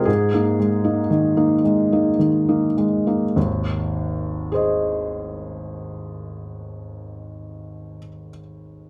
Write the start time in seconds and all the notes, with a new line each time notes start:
Already playing: C4 F4
0.05 G#2 G#4
0.34 A#3 D#4
0.59 G#3
0.84 A#3 D#4
1.10 D#3
1.37 A#3 D#4
1.64 G#3
1.92 A#3 D#4
2.19 D#3
2.49 A#3 D#4
2.77 G#3
3.07 A#3 D#4
3.36 G#1 D#2
4.52 G#4 C5 D#5